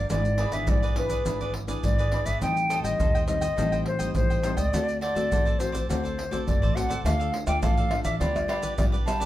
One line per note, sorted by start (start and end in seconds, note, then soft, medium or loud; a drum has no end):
0.09 0.47 G#1 medium
0.09 0.65 G#2 medium
0.09 0.37 E3 medium
0.09 0.37 B3 medium
0.09 0.37 D4 medium
0.09 0.23 E4 medium
0.09 0.23 G#4 soft
0.09 0.24 B4 medium
0.09 0.55 D5 medium
0.09 0.24 D5 medium
0.09 pandeiro medium
0.09 maracas medium
0.09 surdo medium
0.24 muted cavaquinho stroke soft
0.24 pandeiro soft
0.24 maracas soft
0.38 0.52 E4 medium
0.38 0.52 G#4 medium
0.38 0.52 B4 medium
0.38 0.51 D5 medium
0.38 pandeiro medium
0.52 0.65 G#1 medium
0.52 0.92 E3 medium
0.52 0.92 B3 medium
0.52 0.92 D4 medium
0.52 0.67 G#4 medium
0.52 0.66 B4 medium
0.52 0.66 D5 medium
0.52 0.71 E5 medium
0.52 pandeiro medium
0.52 maracas medium
0.67 1.17 B1 medium
0.67 1.22 G#2 medium
0.67 0.81 E4 soft
0.67 0.81 G#4 soft
0.67 0.82 B4 medium
0.67 0.81 D5 medium
0.67 0.98 D5 medium
0.67 pandeiro medium
0.67 maracas medium
0.67 surdo loud
0.82 1.10 G#4 medium
0.82 1.10 B4 medium
0.82 1.09 D5 medium
0.82 pandeiro soft
0.82 maracas soft
0.82 surdo soft
0.96 1.21 E3 medium
0.96 1.21 B3 medium
0.96 1.21 D4 medium
0.96 1.53 B4 medium
0.96 pandeiro medium
1.10 1.25 G#4 medium
1.10 1.24 B4 medium
1.10 1.24 D5 medium
1.10 pandeiro medium
1.10 maracas medium
1.10 surdo soft
1.25 1.75 G#1 medium
1.25 1.81 G#2 medium
1.25 1.64 E3 medium
1.25 1.65 B3 medium
1.25 1.65 D4 medium
1.25 1.39 E4 soft
1.25 1.39 G#4 soft
1.25 1.40 B4 soft
1.25 1.40 D5 medium
1.25 pandeiro medium
1.25 maracas medium
1.25 surdo medium
1.41 1.53 G#4 medium
1.41 1.54 B4 medium
1.41 1.54 D5 medium
1.41 pandeiro soft
1.41 maracas soft
1.41 surdo soft
1.54 muted cavaquinho stroke soft
1.54 pandeiro medium
1.67 2.07 E3 medium
1.67 2.07 B3 medium
1.67 2.07 D4 medium
1.67 1.97 G#4 medium
1.67 1.97 B4 medium
1.67 1.97 D5 medium
1.67 pandeiro medium
1.67 maracas medium
1.67 surdo soft
1.83 2.21 G#1 loud
1.83 2.38 G#2 medium
1.83 2.27 D5 medium
1.83 pandeiro medium
1.83 maracas medium
1.83 surdo loud
1.98 2.12 G#4 medium
1.98 2.12 B4 medium
1.98 2.12 D5 medium
1.98 pandeiro soft
1.98 maracas soft
2.11 2.29 E3 medium
2.11 2.29 B3 medium
2.11 2.29 D4 medium
2.11 2.26 E4 soft
2.11 2.26 G#4 medium
2.11 2.25 B4 medium
2.11 2.24 D5 medium
2.11 pandeiro medium
2.25 2.39 G#1 medium
2.25 2.40 G#4 soft
2.25 2.40 B4 medium
2.25 2.40 D5 medium
2.25 2.41 E5 medium
2.25 pandeiro medium
2.25 maracas medium
2.25 surdo soft
2.41 2.79 A1 medium
2.41 2.96 A2 medium
2.41 2.80 G3 medium
2.41 2.80 C4 medium
2.41 2.81 D#4 medium
2.41 2.55 A4 soft
2.41 2.55 C5 medium
2.41 2.56 D#5 medium
2.41 2.82 G5 loud
2.41 2.56 G5 medium
2.41 pandeiro medium
2.41 maracas medium
2.41 surdo medium
2.57 muted cavaquinho stroke soft
2.57 pandeiro soft
2.57 maracas soft
2.69 2.83 A4 medium
2.69 2.84 C5 medium
2.69 2.83 D#5 medium
2.69 2.83 G5 medium
2.69 pandeiro medium
2.69 maracas medium
2.83 2.97 A1 medium
2.83 3.23 G3 medium
2.83 3.23 C4 medium
2.83 3.23 D#4 medium
2.83 2.99 C5 medium
2.83 3.25 D#5 medium
2.83 2.98 D#5 medium
2.83 2.98 G5 medium
2.83 pandeiro medium
2.83 maracas medium
2.99 3.49 D#2 medium
2.99 3.54 A2 medium
2.99 3.13 A4 soft
2.99 3.13 C5 soft
2.99 3.14 D#5 soft
2.99 3.14 G5 medium
2.99 pandeiro medium
2.99 maracas medium
2.99 surdo loud
3.15 3.41 C5 medium
3.15 3.41 D#5 medium
3.15 3.40 G5 medium
3.15 pandeiro soft
3.15 maracas soft
3.27 3.45 G3 medium
3.27 3.45 C4 medium
3.27 3.45 D#4 medium
3.27 3.82 D#5 medium
3.27 pandeiro medium
3.27 maracas medium
3.41 3.56 C5 medium
3.41 3.56 D#5 medium
3.41 3.56 G5 medium
3.41 pandeiro medium
3.41 maracas medium
3.41 surdo soft
3.56 4.07 A1 medium
3.56 4.13 A2 medium
3.56 3.96 G3 medium
3.56 3.96 C4 medium
3.56 3.97 D#4 medium
3.56 3.70 A4 soft
3.56 3.71 C5 soft
3.56 3.71 D#5 medium
3.56 3.71 G5 medium
3.56 pandeiro medium
3.56 maracas medium
3.56 surdo medium
3.72 3.84 C5 medium
3.72 3.85 D#5 medium
3.72 3.85 G5 medium
3.72 pandeiro soft
3.72 maracas soft
3.72 surdo soft
3.85 4.14 C5 medium
3.85 muted cavaquinho stroke soft
3.85 pandeiro medium
3.99 4.39 G3 medium
3.99 4.39 C4 medium
3.99 4.40 D#4 medium
3.99 4.28 C5 medium
3.99 4.28 D#5 medium
3.99 4.28 G5 medium
3.99 pandeiro medium
3.99 maracas medium
3.99 surdo soft
4.15 4.53 A1 medium
4.15 4.71 A2 medium
4.15 4.58 C5 medium
4.15 pandeiro medium
4.15 maracas medium
4.15 surdo loud
4.30 4.42 C5 medium
4.30 4.43 D#5 medium
4.30 4.43 G5 medium
4.30 pandeiro soft
4.30 maracas soft
4.43 4.61 G3 soft
4.43 4.61 C4 soft
4.43 4.62 D#4 medium
4.43 4.57 A4 soft
4.43 4.57 C5 soft
4.43 4.56 D#5 soft
4.43 4.56 G5 soft
4.43 pandeiro medium
4.43 maracas medium
4.57 4.70 C#2 medium
4.57 4.72 C5 medium
4.57 5.00 D5 medium
4.57 4.71 D#5 medium
4.57 4.71 G5 medium
4.57 pandeiro medium
4.57 maracas medium
4.57 surdo soft
4.73 5.10 D2 medium
4.73 5.28 D3 medium
4.73 5.00 A3 medium
4.73 5.01 C4 medium
4.73 4.86 F#4 soft
4.73 5.01 F#4 medium
4.73 4.87 A4 medium
4.73 4.87 C5 medium
4.73 4.87 D5 medium
4.73 pandeiro medium
4.73 maracas medium
4.73 surdo medium
4.88 muted cavaquinho stroke soft
4.88 pandeiro soft
4.88 maracas soft
5.01 5.15 F#4 medium
5.01 5.15 A4 medium
5.01 5.14 C5 medium
5.01 5.61 D5 medium
5.01 5.14 D5 medium
5.01 pandeiro medium
5.15 5.28 D2 medium
5.15 5.55 A3 medium
5.15 5.55 C4 medium
5.15 5.55 F#4 medium
5.15 5.30 A4 medium
5.15 5.30 C5 medium
5.15 5.29 D5 medium
5.15 pandeiro medium
5.15 maracas medium
5.31 5.80 A1 medium
5.31 5.86 A2 medium
5.31 5.45 F#4 soft
5.31 5.45 A4 medium
5.31 5.45 C5 medium
5.31 5.44 D5 medium
5.31 pandeiro medium
5.31 maracas medium
5.31 surdo loud
5.45 5.73 A4 medium
5.45 5.72 C5 medium
5.45 5.71 D5 medium
5.45 pandeiro soft
5.45 maracas soft
5.45 surdo soft
5.59 5.84 A3 soft
5.59 5.84 C4 medium
5.59 5.85 F#4 medium
5.59 5.89 C5 medium
5.59 pandeiro medium
5.59 maracas medium
5.72 5.88 A4 medium
5.72 5.87 C5 medium
5.72 5.87 D5 medium
5.72 pandeiro medium
5.72 maracas medium
5.72 surdo soft
5.89 6.39 D2 medium
5.89 6.44 D3 medium
5.89 6.16 A3 medium
5.89 6.16 C4 medium
5.89 6.03 F#4 soft
5.89 6.17 F#4 medium
5.89 6.03 A4 soft
5.89 6.43 C5 medium
5.89 6.03 C5 medium
5.89 6.02 D5 medium
5.89 pandeiro medium
5.89 maracas medium
5.89 surdo medium
6.03 6.17 A4 medium
6.03 6.17 C5 medium
6.03 6.17 D5 medium
6.03 pandeiro soft
6.03 maracas soft
6.03 surdo soft
6.18 muted cavaquinho stroke soft
6.18 pandeiro medium
6.31 6.71 A3 medium
6.31 6.71 C4 medium
6.31 6.71 F#4 medium
6.31 6.60 A4 medium
6.31 6.60 C5 medium
6.31 6.60 D5 medium
6.31 pandeiro medium
6.31 maracas medium
6.31 surdo soft
6.47 6.60 F#1 medium
6.47 7.02 A2 medium
6.47 6.77 D5 medium
6.47 pandeiro medium
6.47 maracas medium
6.47 surdo loud
6.62 6.75 A1 medium
6.62 6.75 A4 medium
6.62 6.75 C5 medium
6.62 6.75 D5 medium
6.62 pandeiro soft
6.62 maracas soft
6.75 6.93 A3 medium
6.75 6.93 C4 soft
6.75 6.89 F#4 soft
6.75 6.93 F#4 medium
6.75 6.89 A4 soft
6.75 6.88 C5 soft
6.75 6.87 D5 medium
6.75 7.04 F#5 medium
6.75 pandeiro medium
6.75 maracas medium
6.89 7.03 D2 medium
6.89 7.04 A4 medium
6.89 7.03 C5 medium
6.89 7.03 D5 medium
6.89 pandeiro medium
6.89 maracas medium
6.89 surdo soft
7.04 7.29 D2 medium
7.04 7.60 D3 medium
7.04 7.44 A3 medium
7.04 7.18 D4 soft
7.04 7.44 D4 medium
7.04 7.44 F4 medium
7.04 7.18 A4 medium
7.04 7.19 D5 medium
7.04 7.45 F5 loud
7.04 7.18 F5 medium
7.04 pandeiro medium
7.04 tamborim medium
7.04 maracas medium
7.04 surdo medium
7.19 7.32 A4 medium
7.19 7.32 D5 medium
7.19 7.32 F5 medium
7.19 pandeiro soft
7.19 maracas soft
7.33 muted cavaquinho stroke soft
7.33 pandeiro medium
7.47 7.60 D2 medium
7.47 7.87 A3 medium
7.47 7.87 D4 medium
7.47 7.87 F4 medium
7.47 7.62 A4 medium
7.47 7.61 D5 medium
7.47 7.61 F5 medium
7.47 7.61 G5 medium
7.47 pandeiro medium
7.47 tamborim medium
7.47 maracas medium
7.62 7.88 A1 medium
7.62 8.18 A2 medium
7.62 7.76 D4 medium
7.62 7.76 A4 medium
7.62 7.76 D5 medium
7.62 8.03 F5 medium
7.62 7.76 F5 medium
7.62 pandeiro medium
7.62 tamborim medium
7.62 maracas medium
7.62 surdo loud
7.77 8.05 A4 medium
7.77 8.04 D5 medium
7.77 8.03 F5 medium
7.77 pandeiro soft
7.77 maracas soft
7.91 8.18 A3 medium
7.91 8.18 D4 medium
7.91 8.19 F4 medium
7.91 pandeiro medium
7.91 tamborim medium
8.04 8.18 A1 medium
8.04 8.20 A4 medium
8.04 8.19 D5 medium
8.04 8.19 E5 medium
8.04 8.19 F5 medium
8.04 pandeiro medium
8.04 maracas medium
8.04 surdo soft
8.19 8.45 D2 medium
8.19 8.76 D3 medium
8.19 8.30 G3 medium
8.19 8.31 B3 medium
8.19 8.34 F4 medium
8.19 8.31 F4 medium
8.19 8.34 G4 medium
8.19 8.34 B4 soft
8.19 8.74 D5 medium
8.19 8.35 D5 medium
8.19 pandeiro medium
8.19 maracas medium
8.19 surdo medium
8.35 8.74 G3 medium
8.35 8.74 B3 medium
8.35 8.75 F4 medium
8.35 muted cavaquinho stroke soft
8.35 pandeiro soft
8.35 tamborim medium
8.35 maracas soft
8.35 surdo soft
8.48 8.62 F4 medium
8.48 8.62 G4 medium
8.48 8.62 B4 medium
8.48 8.61 D5 medium
8.48 pandeiro medium
8.48 tamborim medium
8.62 8.92 G4 medium
8.62 8.91 B4 medium
8.62 8.91 D5 medium
8.62 pandeiro medium
8.62 maracas medium
8.62 surdo soft
8.78 9.03 B1 medium
8.78 9.26 D3 medium
8.78 8.96 G3 medium
8.78 8.96 B3 medium
8.78 8.96 F4 medium
8.78 8.85 D5 medium
8.78 pandeiro medium
8.78 tamborim medium
8.78 maracas medium
8.78 surdo loud
8.92 9.05 G4 medium
8.92 9.06 B4 medium
8.92 9.06 D5 medium
8.92 pandeiro soft
8.92 maracas soft
9.06 9.26 G3 medium
9.06 9.26 B3 medium
9.06 9.20 F4 soft
9.06 9.26 F4 medium
9.06 9.21 G4 medium
9.06 9.20 B4 soft
9.06 9.19 D5 medium
9.06 9.26 A5 loud
9.06 pandeiro medium
9.06 tamborim medium
9.06 maracas medium
9.20 9.26 G4 medium
9.20 9.26 B4 medium
9.20 9.26 D5 medium
9.20 pandeiro medium
9.20 maracas medium
9.20 surdo soft